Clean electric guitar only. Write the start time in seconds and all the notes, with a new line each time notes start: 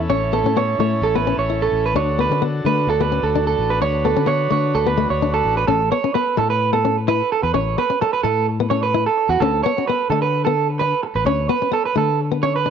0.10 C#5
0.33 A4
0.57 C#5
0.80 C#5
1.03 A4
1.15 B4
1.39 C#5
1.62 A4
1.86 B4
1.96 C#5
2.20 B4
2.66 B4
2.90 A4
3.01 B4
3.23 A4
3.47 A4
3.70 B4
3.82 C#5
4.05 A4
4.27 C#5
4.52 C#5
4.75 A4
4.87 B4
5.10 C#5
5.34 A4
5.57 B4
5.68 A4
5.92 C#5
6.14 B4
6.38 A4
6.50 B4
6.73 A4
7.08 B4
7.32 A4
7.43 B4
7.54 C#5
7.78 B4
8.01 A4
8.13 B4
8.23 A4
8.70 C#5
8.83 B4
9.06 A4
9.29 F#4
9.40 A4
9.63 C#5
9.87 B4
10.10 A4
10.22 B4
10.45 A4
10.79 B4
11.03 muted clean electric guitar stroke
11.16 B4
11.26 C#5
11.49 B4
11.73 A4
11.85 B4
11.97 A4
12.43 C#5
12.56 B4